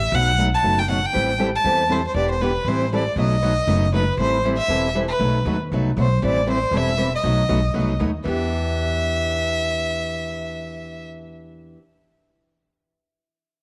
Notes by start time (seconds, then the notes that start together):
Already playing: E5
0.12 B1 B2 F#3 A3 D#4 F#4 F#5
0.38 B2 F#3 A3 D#4 F#4
0.54 A5
0.63 F#1 B2 F#3 A3 D#4 F#4
0.79 G5
0.88 B2 F#3 A3 D#4 F#4 F#5
1.06 G5
1.13 A1 E3 G3 C4 E4 A4
1.39 E3 G3 C4 E4 A4
1.56 A5
1.64 E2 E3 G3 C4 E4 A4
1.89 E3 G3 C4 E4 A4 C5
2.07 C5
2.15 E1 E3 B3 D4 G4 D5
2.31 C5
2.41 E3 B3 D4 G4 B4
2.65 A1 E3 G3 C4 E4 A4 C5
2.93 E3 G3 C4 E4 A4 D5
3.16 B1 B2 F#3 A3 D#4 F#4
3.20 D#5
3.42 B2 F#3 A3 D#4 F#4
3.67 F#1 B2 F#3 A3 D#4 F#4
3.93 B2 F#3 A3 D#4 F#4 B4
4.17 A1 E3 G3 C4 E4 A4 C5
4.44 E3 G3 C4 E4 A4
4.57 E5
4.68 E1 E3 G3 C4 E4 A4
4.95 E3 G3 C4 E4 A4
5.08 B4
5.20 B1 B2 F#3 A3 D#4 F#4
5.45 D#2 B2 F#3 A3 D#4 F#4
5.72 C2 B2 F#3 A3 D#4 F#4
5.97 B1 B2 F#3 A3 D#4 F#4 C5
6.22 A1 E3 G3 C4 E4 A4 D5
6.46 E3 G3 C4 E4 A4
6.51 C5
6.71 E1 E3 G3 C4 E4 A4
6.77 E5
6.97 E3 G3 C4 E4 A4
7.15 D#5
7.24 B1 B2 F#3 A3 D#4 F#4
7.48 B1 B2 F#3 A3 D#4 F#4
7.74 C2 B2 F#3 A3 D#4 F#4
7.99 D#2 B2 F#3 A3 D#4 F#4
8.24 E2 E3 B3 D4 G4 E5